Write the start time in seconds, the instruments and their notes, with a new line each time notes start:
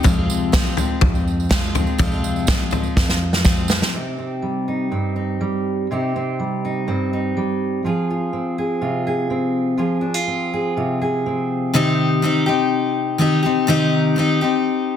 0.03 steel-string acoustic guitar F2 C3 F3 G#3 C4 F4, picked electric bass F2, kick, floor tom, tambourine
0.30 tambourine
0.52 steel-string acoustic guitar F3 G#3 C4 F4, kick, snare, tambourine
0.67 tambourine
0.77 steel-string acoustic guitar F3 G#3 C4 F4, floor tom, tambourine
1.01 picked electric bass F2, kick, floor tom
1.15 tambourine
1.28 tambourine
1.40 tambourine
1.49 steel-string acoustic guitar F3 G#3 C4 F4, kick, snare, tambourine
1.63 tambourine
1.75 steel-string acoustic guitar F3 G#3 C4 F4, floor tom, tambourine
1.87 tambourine
1.98 steel-string acoustic guitar F2 C3 F3 G#3 C4 F4, picked electric bass F2, kick, floor tom, tambourine
2.12 tambourine
2.24 tambourine
2.36 tambourine
2.47 steel-string acoustic guitar F3 G#3 C4 F4, kick, snare, tambourine
2.59 tambourine
2.71 steel-string acoustic guitar F3 G#3 C4 F4, floor tom, tambourine
2.83 tambourine
2.97 picked electric bass F2, kick, snare
3.09 snare, tambourine
3.33 snare, tambourine
3.44 steel-string acoustic guitar F3 G#3 C4 F4, kick, snare, tambourine
3.57 tambourine
3.68 steel-string acoustic guitar G#3 C4 F4, snare, tambourine
3.73 steel-string acoustic guitar F3
3.82 snare
3.94 steel-string acoustic guitar C3 C4 D#4 G4
4.18 steel-string acoustic guitar C4
4.42 steel-string acoustic guitar G3
4.68 steel-string acoustic guitar D#4
4.91 steel-string acoustic guitar G2 C4
5.16 steel-string acoustic guitar D#4
5.41 steel-string acoustic guitar G3
5.91 steel-string acoustic guitar C3 C4 D#4 G4
6.16 steel-string acoustic guitar C4
6.39 steel-string acoustic guitar G3
6.65 steel-string acoustic guitar D#4
6.87 steel-string acoustic guitar G2 C4
7.13 steel-string acoustic guitar D#4
7.37 steel-string acoustic guitar G3
7.85 steel-string acoustic guitar F3 F4 G#4
8.10 steel-string acoustic guitar F4
8.33 steel-string acoustic guitar C4
8.58 steel-string acoustic guitar G#4
8.81 steel-string acoustic guitar C3 F4
9.07 steel-string acoustic guitar G#4
9.30 steel-string acoustic guitar C4
9.78 steel-string acoustic guitar F3 F4 G#4
10.01 steel-string acoustic guitar D4
10.14 steel-string acoustic guitar F4
10.27 steel-string acoustic guitar C4
10.53 steel-string acoustic guitar G#4
10.77 steel-string acoustic guitar C3 F4
11.02 steel-string acoustic guitar G#4
11.26 steel-string acoustic guitar C4
11.73 steel-string acoustic guitar C3 D#3 C4 D#4 G4
12.22 steel-string acoustic guitar D#3 C4 D#4 G4
12.46 steel-string acoustic guitar C4 D#4 G4
13.18 steel-string acoustic guitar D#3 C4 D#4 G4
13.43 steel-string acoustic guitar C4 D#4 G4
13.67 steel-string acoustic guitar C3 D#3 C4 D#4 G4
14.16 steel-string acoustic guitar D#3 C4 D#4 G4
14.41 steel-string acoustic guitar C4 D#4 G4